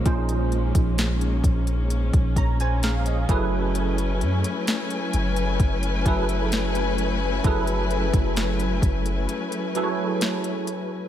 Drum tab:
HH |xxxxxxxxxxxxxxx-|xxxxxxxxxxxxxxx-|xxxxxxxxxxx-xxx-|
SD |----o-------o---|----o-------o---|----o-------o---|
BD |o--o--o--oo---o-|--------o-o-----|o--o--o---------|